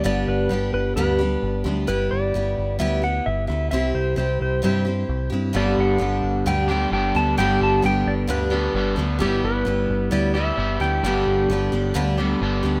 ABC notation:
X:1
M:4/4
L:1/8
Q:1/4=131
K:G
V:1 name="Electric slide guitar"
d B2 B B3 z | B d3 e f e e | e c c c c3 z | d f3 g g g a |
g a g d B3 z | G B3 d e2 g- | g6 z2 |]
V:2 name="Clean electric guitar"
z8 | z8 | z8 | [G,,D,G,B,DG]4- [G,,D,G,B,DG] [G,,D,G,B,DG] [G,,D,G,B,DG]2 |
[G,,D,G,B,DG]4- [G,,D,G,B,DG] [G,,D,G,B,DG] [G,,D,G,B,DG]2 | [G,B,EG]4- [G,B,EG] [G,B,EG] [G,B,EG]2 | [G,,D,G,B,DG]4- [G,,D,G,B,DG] [G,,D,G,B,DG] [G,,D,G,B,DG]2 |]
V:3 name="Steel-string acoustic guitar"
[G,,D,G,B,DG]2 [G,B,DG]2 [G,,D,G,B,DG] [G,B,DG]2 [G,B,DG] | [G,B,EG]2 [G,B,EG]2 [G,B,EG] [B,EG]2 [B,EG] | [C,G,CEG]2 [G,CEG]2 [C,G,CEG] [CEG]2 [CEG] | [G,,D,G,B,DG]2 [G,B,DG]2 [G,,D,G,B,DG] [G,B,DG]2 [G,B,DG] |
[G,,D,G,B,DG]2 [G,B,DG]2 [G,,D,G,B,DG] [G,B,DG]2 [G,B,DG] | [G,B,EG]2 [G,B,EG]2 [G,B,EG] [B,EG]2 [B,EG] | [G,,D,G,B,DG]2 [G,B,DG] [G,B,DG] [G,,D,G,B,DG] [G,B,DG]2 [G,B,DG] |]
V:4 name="Picked electric bass" clef=bass
G,,, G,,, G,,, G,,, D,,2 G,,, D,, | G,,, G,,, G,,, G,,, D,,2 G,,, D,, | C,, C,, C,, C,, G,,2 C,, G,, | G,,, G,,, G,,, G,,, D,,2 G,,, D,, |
G,,, G,,, G,,, G,,, D,,2 G,,, D,, | G,,, G,,, G,,, G,,, D,,2 G,,, D,, | G,,, G,,, G,,, G,,, D,,2 G,,, D,, |]